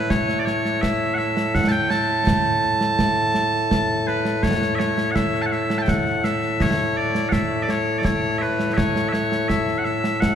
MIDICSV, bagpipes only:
0, 0, Header, 1, 2, 480
1, 0, Start_track
1, 0, Key_signature, 3, "major"
1, 0, Tempo, 722892
1, 65, Time_signature, 3, 2, 24, 8
1, 6872, End_track
2, 0, Start_track
2, 0, Title_t, "Bagpipes"
2, 0, Program_c, 0, 109
2, 0, Note_on_c, 0, 45, 89
2, 0, Note_on_c, 0, 57, 89
2, 0, Note_on_c, 0, 71, 88
2, 67, Note_off_c, 0, 71, 0
2, 67, Note_on_c, 0, 73, 97
2, 262, Note_off_c, 0, 73, 0
2, 262, Note_on_c, 0, 74, 74
2, 304, Note_off_c, 0, 74, 0
2, 304, Note_on_c, 0, 73, 96
2, 540, Note_off_c, 0, 73, 0
2, 540, Note_on_c, 0, 76, 97
2, 755, Note_off_c, 0, 76, 0
2, 755, Note_on_c, 0, 78, 100
2, 782, Note_off_c, 0, 78, 0
2, 782, Note_on_c, 0, 76, 100
2, 1025, Note_off_c, 0, 76, 0
2, 1025, Note_on_c, 0, 78, 98
2, 1117, Note_off_c, 0, 78, 0
2, 1117, Note_on_c, 0, 81, 109
2, 1139, Note_off_c, 0, 81, 0
2, 1139, Note_on_c, 0, 79, 109
2, 1262, Note_off_c, 0, 79, 0
2, 1262, Note_on_c, 0, 81, 104
2, 2705, Note_off_c, 0, 81, 0
2, 2705, Note_on_c, 0, 71, 75
2, 2940, Note_off_c, 0, 71, 0
2, 2940, Note_on_c, 0, 73, 93
2, 3155, Note_off_c, 0, 73, 0
2, 3155, Note_on_c, 0, 76, 85
2, 3180, Note_off_c, 0, 76, 0
2, 3180, Note_on_c, 0, 73, 85
2, 3394, Note_off_c, 0, 73, 0
2, 3394, Note_on_c, 0, 78, 92
2, 3422, Note_off_c, 0, 78, 0
2, 3422, Note_on_c, 0, 76, 92
2, 3597, Note_off_c, 0, 76, 0
2, 3597, Note_on_c, 0, 81, 73
2, 3625, Note_off_c, 0, 81, 0
2, 3625, Note_on_c, 0, 78, 73
2, 3666, Note_off_c, 0, 78, 0
2, 3666, Note_on_c, 0, 76, 100
2, 3839, Note_off_c, 0, 76, 0
2, 3839, Note_on_c, 0, 81, 64
2, 3864, Note_off_c, 0, 81, 0
2, 3864, Note_on_c, 0, 79, 64
2, 3907, Note_off_c, 0, 79, 0
2, 3907, Note_on_c, 0, 78, 84
2, 4144, Note_off_c, 0, 78, 0
2, 4144, Note_on_c, 0, 76, 103
2, 4395, Note_off_c, 0, 76, 0
2, 4395, Note_on_c, 0, 73, 93
2, 4629, Note_off_c, 0, 73, 0
2, 4629, Note_on_c, 0, 74, 77
2, 4839, Note_off_c, 0, 74, 0
2, 4839, Note_on_c, 0, 78, 90
2, 4862, Note_off_c, 0, 78, 0
2, 4862, Note_on_c, 0, 76, 90
2, 5062, Note_off_c, 0, 76, 0
2, 5062, Note_on_c, 0, 74, 69
2, 5116, Note_off_c, 0, 74, 0
2, 5116, Note_on_c, 0, 73, 94
2, 5303, Note_off_c, 0, 73, 0
2, 5303, Note_on_c, 0, 74, 66
2, 5347, Note_off_c, 0, 74, 0
2, 5347, Note_on_c, 0, 73, 91
2, 5567, Note_off_c, 0, 73, 0
2, 5567, Note_on_c, 0, 76, 83
2, 5589, Note_off_c, 0, 76, 0
2, 5589, Note_on_c, 0, 71, 83
2, 5801, Note_off_c, 0, 71, 0
2, 5801, Note_on_c, 0, 76, 88
2, 5823, Note_off_c, 0, 76, 0
2, 5823, Note_on_c, 0, 73, 88
2, 6034, Note_off_c, 0, 73, 0
2, 6034, Note_on_c, 0, 76, 87
2, 6060, Note_off_c, 0, 76, 0
2, 6060, Note_on_c, 0, 73, 87
2, 6297, Note_off_c, 0, 73, 0
2, 6297, Note_on_c, 0, 76, 95
2, 6492, Note_off_c, 0, 76, 0
2, 6492, Note_on_c, 0, 78, 78
2, 6537, Note_off_c, 0, 78, 0
2, 6537, Note_on_c, 0, 76, 102
2, 6773, Note_off_c, 0, 76, 0
2, 6773, Note_on_c, 0, 78, 91
2, 6872, Note_off_c, 0, 45, 0
2, 6872, Note_off_c, 0, 57, 0
2, 6872, Note_off_c, 0, 78, 0
2, 6872, End_track
0, 0, End_of_file